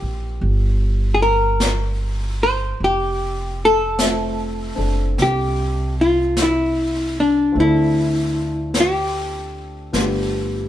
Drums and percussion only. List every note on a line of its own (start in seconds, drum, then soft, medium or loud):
0.41 brush sweep soft
1.60 brush sweep soft
1.60 snare soft
1.60 hi-hat pedal medium
2.79 brush sweep soft
3.99 brush sweep soft
3.99 snare soft
3.99 hi-hat pedal medium
5.18 brush sweep soft
5.18 snare soft
6.37 brush sweep soft
6.37 snare soft
6.37 hi-hat pedal medium
7.55 brush sweep soft
8.74 brush sweep soft
8.74 snare soft
8.74 hi-hat pedal soft
9.93 brush sweep soft
9.93 snare soft